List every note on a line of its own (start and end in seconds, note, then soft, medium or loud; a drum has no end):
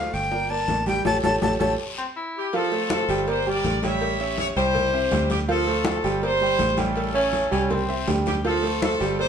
0.00 0.25 A3 medium
0.00 0.26 A4 medium
0.00 0.26 C5 medium
0.00 0.15 F5 loud
0.13 0.65 G1 medium
0.13 0.52 G5 loud
0.13 high bongo soft
0.13 high conga soft
0.13 short guiro medium
0.31 0.47 A#3 medium
0.31 0.47 A#4 medium
0.31 0.47 D5 medium
0.31 high bongo medium
0.31 high conga soft
0.31 long guiro medium
0.50 0.80 A#3 medium
0.50 0.81 A#4 medium
0.50 0.81 D5 medium
0.50 0.87 A5 loud
0.50 high bongo soft
0.50 high conga soft
0.68 1.03 A1 medium
0.68 high bongo soft
0.68 low bongo medium
0.68 high conga medium
0.68 short guiro medium
0.86 1.02 G3 medium
0.86 1.02 G4 loud
0.86 1.02 G5 medium
0.86 1.05 G5 medium
0.86 high bongo soft
0.86 high conga medium
0.86 short guiro medium
1.05 1.19 A1 loud
1.05 1.17 G4 loud
1.05 1.17 A4 medium
1.05 1.17 C#5 loud
1.05 1.18 A5 loud
1.05 high bongo loud
1.05 high conga medium
1.05 long guiro loud
1.23 1.37 A1 medium
1.23 1.35 G4 medium
1.23 1.35 A4 loud
1.23 1.35 C#5 loud
1.23 1.36 A5 loud
1.23 high bongo medium
1.23 high conga loud
1.23 long guiro medium
1.42 1.56 A1 loud
1.42 1.54 G4 medium
1.42 1.54 A4 medium
1.42 1.54 C#5 medium
1.42 1.54 A5 loud
1.42 high bongo loud
1.42 high conga loud
1.42 long guiro medium
1.60 1.74 A1 loud
1.60 1.72 G4 loud
1.60 1.72 A4 loud
1.60 1.72 C#5 loud
1.60 1.72 A5 medium
1.60 high bongo medium
1.60 high conga medium
1.60 long guiro medium
1.98 2.06 C4 medium
2.16 2.51 E4 loud
2.37 2.53 G4 medium
2.53 2.68 F3 medium
2.53 2.91 C4 medium
2.53 2.69 F4 medium
2.53 2.91 F4 medium
2.53 2.89 A4 loud
2.53 2.69 F5 medium
2.53 cowbell loud
2.53 high conga soft
2.53 long guiro medium
2.72 3.02 A3 medium
2.72 3.02 A4 medium
2.72 3.02 C5 medium
2.72 cowbell medium
2.72 high conga soft
2.90 3.26 C4 medium
2.90 3.25 F4 medium
2.90 3.26 A4 loud
2.90 cowbell medium
2.90 high conga loud
2.90 short guiro medium
3.08 3.60 G1 medium
3.08 3.24 G3 loud
3.08 3.24 G4 loud
3.08 3.24 G5 loud
3.08 high conga soft
3.08 short guiro medium
3.27 3.43 A#3 medium
3.27 3.47 G4 medium
3.27 3.43 A#4 medium
3.27 3.47 C5 loud
3.27 3.43 D5 medium
3.27 cowbell loud
3.27 high conga soft
3.27 long guiro medium
3.46 3.76 G3 medium
3.46 3.76 G4 medium
3.46 3.83 G4 medium
3.46 3.99 A#4 medium
3.46 3.84 D5 loud
3.46 3.76 G5 medium
3.46 high conga soft
3.64 4.51 A1 loud
3.64 cowbell medium
3.64 high conga medium
3.64 short guiro medium
3.83 4.13 G3 loud
3.83 4.13 G4 medium
3.83 4.53 G4 medium
3.83 4.38 C#5 medium
3.83 4.39 E5 loud
3.83 4.13 G5 medium
3.83 cowbell medium
3.83 high conga medium
3.83 short guiro medium
4.01 cowbell loud
4.01 high conga soft
4.01 long guiro medium
4.20 4.50 C#4 medium
4.20 4.50 C#5 medium
4.20 4.50 E5 medium
4.20 cowbell medium
4.20 high conga soft
4.38 4.47 C#5 loud
4.38 cowbell medium
4.38 high conga medium
4.38 short guiro medium
4.56 5.08 C2 loud
4.56 4.87 G3 loud
4.56 5.27 E4 medium
4.56 4.87 G4 medium
4.56 5.26 G4 medium
4.56 5.26 C5 loud
4.56 4.87 G5 loud
4.56 cowbell medium
4.56 high conga soft
4.56 short guiro medium
4.75 cowbell loud
4.75 high conga soft
4.75 low conga medium
4.75 long guiro medium
4.93 5.08 C4 medium
4.93 5.09 C5 medium
4.93 5.09 E5 medium
4.93 high conga soft
5.11 5.98 D2 loud
5.11 5.42 G3 medium
5.11 5.42 G4 medium
5.11 5.42 G5 medium
5.11 cowbell medium
5.11 high conga medium
5.11 short guiro medium
5.30 5.39 G4 medium
5.30 cowbell medium
5.30 high conga medium
5.30 short guiro medium
5.48 5.64 F3 medium
5.48 5.86 C4 medium
5.48 5.64 F4 medium
5.48 5.86 F4 medium
5.48 5.84 A4 loud
5.48 5.64 F5 medium
5.48 cowbell loud
5.48 high conga soft
5.48 long guiro medium
5.66 5.98 A3 medium
5.66 5.98 A4 medium
5.66 5.98 C5 medium
5.66 cowbell medium
5.66 high conga soft
5.85 6.21 C4 medium
5.85 6.21 F4 medium
5.85 6.21 A4 loud
5.85 cowbell medium
5.85 high conga loud
5.85 short guiro medium
6.04 6.56 G1 medium
6.04 6.19 G3 loud
6.04 6.19 G4 medium
6.04 6.19 G5 loud
6.04 high conga soft
6.04 short guiro medium
6.22 6.38 A#3 medium
6.22 6.93 G4 medium
6.22 6.38 A#4 medium
6.22 6.79 C5 loud
6.22 6.38 D5 medium
6.22 cowbell loud
6.22 high conga soft
6.22 long guiro medium
6.41 6.71 G3 medium
6.41 6.72 G4 medium
6.41 6.72 G5 medium
6.41 high conga soft
6.59 7.46 A1 loud
6.59 cowbell medium
6.59 high conga medium
6.59 short guiro medium
6.77 7.08 G3 loud
6.77 7.67 C#4 medium
6.77 7.86 E4 medium
6.77 7.08 G4 loud
6.77 7.85 A4 loud
6.77 7.09 G5 loud
6.77 cowbell medium
6.77 high conga medium
6.77 short guiro medium
6.96 cowbell loud
6.96 high conga soft
6.96 long guiro medium
7.14 7.45 C#4 medium
7.14 7.49 C#4 loud
7.14 7.45 C#5 medium
7.14 7.45 E5 medium
7.14 cowbell medium
7.14 high conga soft
7.33 cowbell medium
7.33 high conga medium
7.33 short guiro medium
7.51 8.04 C2 medium
7.51 7.82 G3 loud
7.51 7.72 C#4 loud
7.51 7.82 G4 medium
7.51 7.82 G5 loud
7.51 cowbell medium
7.51 high conga soft
7.51 short guiro medium
7.70 8.17 C4 loud
7.70 cowbell loud
7.70 high conga soft
7.70 low conga medium
7.70 long guiro medium
7.88 8.04 C4 medium
7.88 8.04 C5 medium
7.88 8.04 E5 medium
7.88 high conga soft
8.07 8.94 D2 medium
8.07 8.38 G3 medium
8.07 8.38 G4 medium
8.07 8.38 G5 medium
8.07 cowbell medium
8.07 high conga medium
8.07 short guiro medium
8.26 8.35 G4 medium
8.26 cowbell medium
8.26 high conga medium
8.26 short guiro medium
8.45 8.60 F3 medium
8.45 8.83 C4 medium
8.45 8.60 F4 medium
8.45 8.83 F4 medium
8.45 8.80 A4 loud
8.45 8.60 F5 medium
8.45 cowbell loud
8.45 high conga soft
8.45 long guiro medium
8.62 8.93 A3 medium
8.62 8.93 A4 medium
8.62 8.93 C5 medium
8.62 cowbell medium
8.62 high conga soft
8.82 9.17 C4 medium
8.82 9.18 F4 medium
8.82 9.17 A4 loud
8.82 cowbell medium
8.82 high conga loud
8.82 short guiro medium
9.00 9.28 G1 medium
9.00 9.16 G3 loud
9.00 9.16 G4 loud
9.00 9.16 G5 loud
9.00 high conga soft
9.00 short guiro medium
9.19 9.28 A#3 medium
9.19 9.28 G4 medium
9.19 9.28 A#4 medium
9.19 9.28 C5 loud
9.19 9.28 D5 medium
9.19 cowbell loud
9.19 high conga soft
9.19 long guiro medium